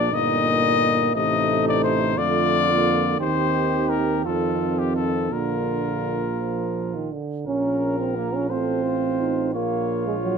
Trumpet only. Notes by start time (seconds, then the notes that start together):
Already playing: D5
0.14 D#5
1.15 D#5
1.68 D5
1.84 C5
2.18 D5
3.20 C5
3.89 A#4
4.24 A4
4.79 G4
4.96 A4
5.32 A#4
7.47 A#4
8.50 C5
9.54 C#5